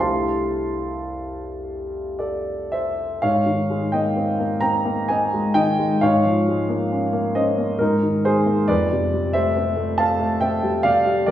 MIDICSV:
0, 0, Header, 1, 2, 480
1, 0, Start_track
1, 0, Tempo, 1115242
1, 5, Time_signature, 3, 2, 24, 8
1, 485, Tempo, 1052632
1, 1445, Tempo, 927357
1, 2885, Tempo, 894188
1, 3845, Tempo, 867052
1, 5787, End_track
2, 0, Start_track
2, 0, Title_t, "Grand piano"
2, 0, Program_c, 0, 0
2, 0, Control_c, 0, 64, 127
2, 0, Note_on_c, 0, 36, 36
2, 0, Note_on_c, 0, 55, 25
2, 0, Note_on_c, 0, 57, 26
2, 0, Note_on_c, 0, 62, 26
2, 0, Note_on_c, 0, 64, 28
2, 0, Note_on_c, 0, 84, 55
2, 1, Note_on_c, 0, 72, 37
2, 1, Note_on_c, 0, 77, 39
2, 2, Note_on_c, 0, 81, 40
2, 13, Control_c, 0, 64, 0
2, 105, Control_c, 0, 64, 127
2, 952, Note_off_c, 0, 72, 0
2, 952, Note_off_c, 0, 77, 0
2, 953, Note_off_c, 0, 81, 0
2, 969, Note_off_c, 0, 84, 0
2, 969, Note_on_c, 0, 74, 45
2, 973, Note_on_c, 0, 69, 36
2, 1199, Note_off_c, 0, 69, 0
2, 1210, Note_on_c, 0, 76, 56
2, 1214, Note_off_c, 0, 74, 0
2, 1217, Note_on_c, 0, 72, 39
2, 1415, Note_off_c, 0, 36, 0
2, 1417, Note_off_c, 0, 55, 0
2, 1420, Note_off_c, 0, 57, 0
2, 1421, Note_off_c, 0, 62, 0
2, 1424, Note_off_c, 0, 64, 0
2, 1430, Note_off_c, 0, 72, 0
2, 1439, Note_on_c, 0, 77, 69
2, 1442, Note_off_c, 0, 76, 0
2, 1444, Note_on_c, 0, 73, 50
2, 1445, Note_on_c, 0, 44, 41
2, 1455, Control_c, 0, 64, 0
2, 1528, Control_c, 0, 64, 127
2, 1563, Note_on_c, 0, 51, 36
2, 1687, Note_on_c, 0, 56, 38
2, 1757, Note_off_c, 0, 51, 0
2, 1785, Note_off_c, 0, 73, 0
2, 1801, Note_on_c, 0, 79, 60
2, 1803, Note_off_c, 0, 77, 0
2, 1809, Note_on_c, 0, 75, 51
2, 1810, Note_on_c, 0, 58, 33
2, 1879, Note_off_c, 0, 56, 0
2, 1928, Note_on_c, 0, 60, 36
2, 1999, Note_off_c, 0, 58, 0
2, 2048, Note_on_c, 0, 58, 39
2, 2119, Note_off_c, 0, 60, 0
2, 2146, Note_off_c, 0, 75, 0
2, 2156, Note_off_c, 0, 79, 0
2, 2156, Note_on_c, 0, 82, 68
2, 2164, Note_on_c, 0, 60, 39
2, 2164, Note_on_c, 0, 79, 49
2, 2239, Note_off_c, 0, 58, 0
2, 2284, Note_on_c, 0, 58, 42
2, 2357, Note_off_c, 0, 60, 0
2, 2389, Note_off_c, 0, 79, 0
2, 2401, Note_off_c, 0, 82, 0
2, 2404, Note_on_c, 0, 80, 63
2, 2410, Note_on_c, 0, 60, 38
2, 2413, Note_on_c, 0, 75, 48
2, 2478, Note_off_c, 0, 58, 0
2, 2532, Note_on_c, 0, 56, 38
2, 2601, Note_off_c, 0, 60, 0
2, 2633, Note_off_c, 0, 75, 0
2, 2641, Note_on_c, 0, 79, 77
2, 2644, Note_on_c, 0, 51, 40
2, 2646, Note_off_c, 0, 80, 0
2, 2648, Note_on_c, 0, 75, 56
2, 2721, Note_off_c, 0, 56, 0
2, 2768, Note_on_c, 0, 56, 36
2, 2836, Note_off_c, 0, 51, 0
2, 2864, Note_off_c, 0, 44, 0
2, 2869, Note_off_c, 0, 75, 0
2, 2882, Note_off_c, 0, 79, 0
2, 2884, Note_on_c, 0, 77, 72
2, 2886, Note_off_c, 0, 56, 0
2, 2892, Note_on_c, 0, 44, 49
2, 2893, Note_on_c, 0, 73, 55
2, 2894, Control_c, 0, 64, 0
2, 2982, Control_c, 0, 64, 127
2, 3013, Note_on_c, 0, 53, 37
2, 3135, Note_on_c, 0, 56, 37
2, 3201, Note_off_c, 0, 53, 0
2, 3249, Note_on_c, 0, 58, 36
2, 3321, Note_off_c, 0, 56, 0
2, 3372, Note_on_c, 0, 61, 37
2, 3437, Note_off_c, 0, 58, 0
2, 3484, Note_on_c, 0, 58, 40
2, 3559, Note_off_c, 0, 61, 0
2, 3586, Note_off_c, 0, 73, 0
2, 3602, Note_on_c, 0, 75, 60
2, 3603, Note_off_c, 0, 77, 0
2, 3604, Note_on_c, 0, 72, 47
2, 3608, Note_on_c, 0, 61, 39
2, 3676, Note_off_c, 0, 58, 0
2, 3725, Note_on_c, 0, 58, 40
2, 3799, Note_off_c, 0, 61, 0
2, 3827, Note_off_c, 0, 44, 0
2, 3829, Note_off_c, 0, 72, 0
2, 3836, Note_on_c, 0, 70, 59
2, 3845, Note_off_c, 0, 75, 0
2, 3846, Note_off_c, 0, 58, 0
2, 3848, Note_on_c, 0, 44, 48
2, 3849, Note_on_c, 0, 63, 52
2, 3852, Control_c, 0, 64, 0
2, 3929, Control_c, 0, 64, 127
2, 3970, Note_on_c, 0, 51, 35
2, 4078, Note_off_c, 0, 63, 0
2, 4088, Note_off_c, 0, 70, 0
2, 4092, Note_on_c, 0, 72, 70
2, 4095, Note_on_c, 0, 68, 54
2, 4098, Note_on_c, 0, 56, 40
2, 4167, Note_off_c, 0, 51, 0
2, 4210, Note_on_c, 0, 58, 35
2, 4291, Note_off_c, 0, 56, 0
2, 4321, Note_off_c, 0, 68, 0
2, 4324, Note_off_c, 0, 44, 0
2, 4329, Note_on_c, 0, 74, 71
2, 4334, Note_off_c, 0, 58, 0
2, 4335, Note_on_c, 0, 41, 48
2, 4336, Note_on_c, 0, 71, 52
2, 4337, Note_off_c, 0, 72, 0
2, 4347, Control_c, 0, 64, 0
2, 4423, Control_c, 0, 64, 127
2, 4467, Note_on_c, 0, 48, 37
2, 4584, Note_on_c, 0, 55, 35
2, 4655, Note_off_c, 0, 48, 0
2, 4675, Note_off_c, 0, 71, 0
2, 4692, Note_on_c, 0, 76, 73
2, 4694, Note_off_c, 0, 74, 0
2, 4698, Note_on_c, 0, 72, 52
2, 4699, Note_on_c, 0, 57, 34
2, 4772, Note_off_c, 0, 55, 0
2, 4821, Note_on_c, 0, 60, 44
2, 4888, Note_off_c, 0, 57, 0
2, 4933, Note_on_c, 0, 57, 43
2, 5007, Note_off_c, 0, 60, 0
2, 5029, Note_off_c, 0, 72, 0
2, 5049, Note_off_c, 0, 76, 0
2, 5049, Note_on_c, 0, 81, 73
2, 5056, Note_on_c, 0, 77, 53
2, 5058, Note_on_c, 0, 60, 38
2, 5121, Note_off_c, 0, 57, 0
2, 5170, Note_on_c, 0, 57, 46
2, 5243, Note_off_c, 0, 60, 0
2, 5273, Note_off_c, 0, 77, 0
2, 5286, Note_off_c, 0, 81, 0
2, 5286, Note_on_c, 0, 79, 71
2, 5291, Note_on_c, 0, 76, 51
2, 5292, Note_on_c, 0, 60, 45
2, 5360, Note_off_c, 0, 57, 0
2, 5409, Note_on_c, 0, 55, 41
2, 5480, Note_off_c, 0, 60, 0
2, 5512, Note_off_c, 0, 76, 0
2, 5522, Note_on_c, 0, 77, 83
2, 5526, Note_off_c, 0, 79, 0
2, 5529, Note_on_c, 0, 48, 43
2, 5531, Note_on_c, 0, 74, 61
2, 5599, Note_off_c, 0, 55, 0
2, 5647, Note_on_c, 0, 55, 33
2, 5719, Note_off_c, 0, 48, 0
2, 5741, Note_off_c, 0, 41, 0
2, 5750, Note_off_c, 0, 74, 0
2, 5761, Note_on_c, 0, 74, 70
2, 5763, Note_off_c, 0, 77, 0
2, 5765, Note_off_c, 0, 55, 0
2, 5769, Note_on_c, 0, 41, 51
2, 5769, Note_on_c, 0, 70, 60
2, 5774, Control_c, 0, 64, 0
2, 5787, Note_off_c, 0, 41, 0
2, 5787, Note_off_c, 0, 70, 0
2, 5787, Note_off_c, 0, 74, 0
2, 5787, End_track
0, 0, End_of_file